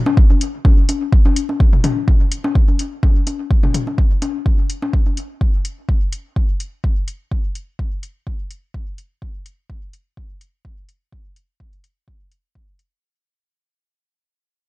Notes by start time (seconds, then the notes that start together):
0.06 high conga
0.17 kick
0.30 high conga
0.41 closed hi-hat
0.65 kick, high conga
0.89 closed hi-hat, high conga
1.12 kick
1.25 high conga
1.36 closed hi-hat
1.49 high conga
1.60 kick
1.73 mid tom
1.84 closed hi-hat, mid tom, high conga
2.08 kick, mid tom, high conga
2.32 closed hi-hat
2.44 high conga
2.55 kick
2.68 high conga
2.79 closed hi-hat
3.03 kick, high conga
3.27 closed hi-hat, high conga
3.51 kick
3.63 mid tom, high conga
3.74 closed hi-hat, mid tom
3.87 high conga
3.98 kick
4.22 closed hi-hat, high conga
4.46 kick, high conga
4.70 closed hi-hat
4.82 high conga
4.93 kick
5.06 high conga
5.17 closed hi-hat
5.41 kick
5.65 closed hi-hat
5.89 kick
6.12 closed hi-hat
6.36 kick
6.60 closed hi-hat
6.84 kick
7.08 closed hi-hat
7.32 kick
7.55 closed hi-hat
7.79 kick
8.03 closed hi-hat
8.27 kick
8.51 closed hi-hat
8.74 kick
8.98 closed hi-hat
9.22 kick
9.46 closed hi-hat
9.70 kick
9.93 closed hi-hat
10.17 kick
10.41 closed hi-hat
10.65 kick
10.89 closed hi-hat
11.12 kick
11.36 closed hi-hat
11.60 kick
11.73 closed hi-hat
11.84 closed hi-hat
12.08 kick
12.32 closed hi-hat
12.55 kick
12.79 closed hi-hat